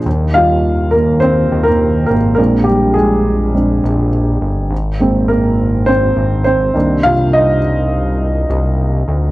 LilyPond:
<<
  \new Staff \with { instrumentName = "Upright piano" } { \time 4/4 \key ees \major \tempo 4 = 103 << { r8 f''4 <bes bes'>8 <c' c''>8. <bes bes'>8. <bes bes'>8 | <bes bes'>8 <g g'>8 <aes aes'>2 r4 | r4 <bes bes'>4 <c' c''>4 <c' c''>4 | <f' f''>8 <ees' ees''>2 r4. | } \\ { r8 <g ees' f'>4. r2 | <aes c' d'>2 <aes c' d'>8 r4. | r8 <aes bes c'>2. <ees bes d'>8~ | <ees bes d'>4 r2. | } >> }
  \new Staff \with { instrumentName = "Analog synth bass" } { \clef bass \time 4/4 \key ees \major ees,2~ ees,8 ees,4 aes,,8 | bes,,2~ bes,,8 bes,,4 g,,8 | aes,,2~ aes,,8 aes,,4 c,8 | c,2~ c,8 c,4 d,8 | }
>>